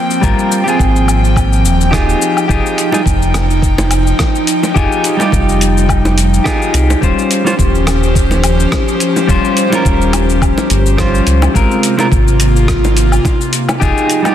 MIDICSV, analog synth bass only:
0, 0, Header, 1, 2, 480
1, 0, Start_track
1, 0, Key_signature, -4, "major"
1, 0, Tempo, 566038
1, 195, Time_signature, 4, 2, 24, 8
1, 12168, End_track
2, 0, Start_track
2, 0, Title_t, "Analog synth bass"
2, 0, Program_c, 0, 38
2, 194, Note_on_c, 0, 32, 91
2, 290, Note_off_c, 0, 32, 0
2, 676, Note_on_c, 0, 32, 92
2, 1393, Note_on_c, 0, 27, 92
2, 1405, Note_off_c, 0, 32, 0
2, 1827, Note_off_c, 0, 27, 0
2, 2113, Note_on_c, 0, 29, 88
2, 2210, Note_off_c, 0, 29, 0
2, 2594, Note_on_c, 0, 29, 90
2, 3507, Note_off_c, 0, 29, 0
2, 4035, Note_on_c, 0, 29, 91
2, 4131, Note_off_c, 0, 29, 0
2, 4515, Note_on_c, 0, 29, 97
2, 5428, Note_off_c, 0, 29, 0
2, 5714, Note_on_c, 0, 36, 91
2, 5896, Note_off_c, 0, 36, 0
2, 5955, Note_on_c, 0, 27, 103
2, 6051, Note_off_c, 0, 27, 0
2, 6434, Note_on_c, 0, 27, 88
2, 7347, Note_off_c, 0, 27, 0
2, 7875, Note_on_c, 0, 27, 95
2, 7971, Note_off_c, 0, 27, 0
2, 8354, Note_on_c, 0, 27, 94
2, 8829, Note_off_c, 0, 27, 0
2, 8835, Note_on_c, 0, 27, 80
2, 8931, Note_off_c, 0, 27, 0
2, 9075, Note_on_c, 0, 31, 101
2, 9508, Note_off_c, 0, 31, 0
2, 9553, Note_on_c, 0, 37, 82
2, 9736, Note_off_c, 0, 37, 0
2, 9797, Note_on_c, 0, 32, 97
2, 9892, Note_off_c, 0, 32, 0
2, 10276, Note_on_c, 0, 32, 92
2, 11189, Note_off_c, 0, 32, 0
2, 11716, Note_on_c, 0, 29, 95
2, 11811, Note_off_c, 0, 29, 0
2, 12168, End_track
0, 0, End_of_file